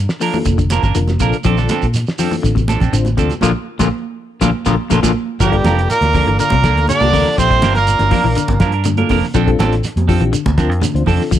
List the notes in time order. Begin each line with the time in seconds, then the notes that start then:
0.09 snare, shekere
0.20 F3 A#3 D4 F4 A4 A#4, open hi-hat, shekere
0.33 E3, high conga, shekere
0.45 F1 D3, kick, closed hi-hat, high conga, shekere
0.58 D3, kick, closed hi-hat, shekere
0.70 F3 A#3 D4 A#4, snare, closed hi-hat, high conga, shekere
0.83 G1 A#3 D4 A#4, kick, low conga, shekere
0.95 F1 D3 A#3 D4 F4 A#4, closed hi-hat, shekere
1.07 snare, high conga, shekere
1.20 A#1 C3 F3 A#3 D4 F4 A4 A#4, kick, closed hi-hat, shekere
1.33 closed hi-hat, shekere
1.44 A#1 F3 C4 D4 F4 A4, kick, closed hi-hat, low conga, shekere
1.58 D3 C4 D4 A4, snare, shekere
1.69 F3 C4 D4 A4, snare, closed hi-hat, high conga, shekere
1.82 A#2, kick, closed hi-hat, shekere
1.94 snare, closed hi-hat, shekere
2.07 snare, shekere
2.18 F3 C4 D4 F4 A4, snare, open hi-hat, low conga, shekere
2.31 E3, high conga, shekere
2.43 A1 D3, kick, snare, closed hi-hat, shekere
2.55 C3, kick, closed hi-hat, high conga, shekere
2.68 F3 D4 A4, muted clean electric guitar stroke, closed hi-hat, high conga, shekere
2.80 A#1 C4 D4 A4, kick, snare, closed hi-hat, low conga, shekere
2.92 A1 D3 C4 D4 F4 C5, closed hi-hat, shekere
3.05 closed hi-hat, high conga, shekere
3.17 D2 C3 F3 C4 D4 F4 A4, kick, closed hi-hat, shekere
3.30 closed hi-hat, high conga, shekere
3.41 A#1 A#2 D3 F3 A#3 D4 F4 A4 A#4, kick, snare, high conga, shekere
3.79 A#1 A#2 D3 F3 A#3 D4 F4 A4 A#4, kick, snare, high conga, shekere
4.41 A#1 A#2 D3 F3 A#3 D4 F4 A4 A#4, kick, snare, high conga, shekere
4.66 A#1 A#2 D3 F3 A#3 D4 F4 A4 A#4, kick, snare, high conga, shekere
4.90 A#1 A#2 D3 F3 A#3 D4 F4 A4 A#4, kick, snare, high conga, shekere
5.03 A#1 A#2 D3 F3 A#3 D4 F4 A#4, kick, snare, high conga, shekere
5.39 G1 G2 F3 G3 A#3 D4 F4 G4 A4 A#4, kick, closed hi-hat, high conga, shekere
5.51 G3 A#3 D4 F4 A4, kick, closed hi-hat
5.64 F1 F3 A#3 D4 A#4, snare, closed hi-hat, high conga, low conga, shekere
5.79 closed hi-hat
5.89 A#2 A#3 A#4, snare, closed hi-hat, high conga, shekere
6.01 D2, snare, closed hi-hat, high conga
6.13 F3 A#3 D4 F4 A4 A#4, kick, open hi-hat, high conga, low conga, shekere
6.27 G1 E3, closed hi-hat
6.38 A#2 D3 A#3 A#4, closed hi-hat, high conga, shekere
6.50 C2 C3, kick, closed hi-hat, high conga
6.63 F3 A#3 D4 F4 A4 A#4, kick, snare, closed hi-hat, shekere
6.76 D2, snare, closed hi-hat
6.88 D3 D4 D5, closed hi-hat, high conga, shekere
7.00 C2 A#3 D4 F4 G4 A#4, closed hi-hat, high conga
7.12 D2 C3 F3 A#3 D4 F4 A4 A#4, kick, open hi-hat, low conga, shekere
7.27 snare
7.38 A#1 C3 F3 C4 C5, kick, closed hi-hat, shekere
7.50 G3, kick, closed hi-hat
7.62 G1 F3 A#3 D4 A#4, snare, closed hi-hat, high conga, shekere
7.75 A#2 A#3 A#4, snare, closed hi-hat
7.87 closed hi-hat, high conga, shekere
7.99 G1 A#3 D4 F4 A#4, snare, closed hi-hat, high conga
8.11 F3 A#3 D4 A#4, kick, open hi-hat, high conga, low conga, shekere
8.24 A#1 E3
8.35 D3, closed hi-hat, high conga, shekere
8.48 G1 C3, kick, closed hi-hat, high conga
8.60 G2 F3 A#3 D4 A#4, kick, snare, closed hi-hat, shekere
8.72 D4 A#4, muted clean electric guitar stroke, closed hi-hat
8.84 D3, closed hi-hat, high conga, shekere
8.97 A#3 D4 F4 A4 A#4, closed hi-hat, high conga
9.09 F1 C3 F3 A#3 D4 A#4, kick, open hi-hat, low conga, shekere
9.23 snare
9.34 A#1 F3 C4 D4 F4 A4, kick, closed hi-hat, shekere
9.46 G3 C4 D4 F4 A4, kick, closed hi-hat
9.59 A1 F3 C4 D4 A4, snare, closed hi-hat, high conga, shekere
9.73 snare, closed hi-hat
9.84 snare, closed hi-hat, high conga, shekere
9.96 F2, closed hi-hat, high conga
10.08 F3 C4 D4 F4 G4 A4, muted clean electric guitar stroke, kick, open hi-hat, low conga, shekere
10.20 A#1 E3, closed hi-hat
10.33 D3, closed hi-hat, high conga, shekere
10.46 D2 C3, kick, closed hi-hat, high conga
10.58 F3 C4 D4 F4 A#4, kick, snare, closed hi-hat, shekere
10.69 F2, closed hi-hat
10.82 D3, closed hi-hat, high conga, low conga, shekere
10.94 D2 C4 D4 F4 C5, closed hi-hat
11.06 F2 C3 F3 C4 D4 F4 A4, kick, open hi-hat, low conga, shekere
11.21 snare
11.31 D2 F3, kick, closed hi-hat, high conga, shekere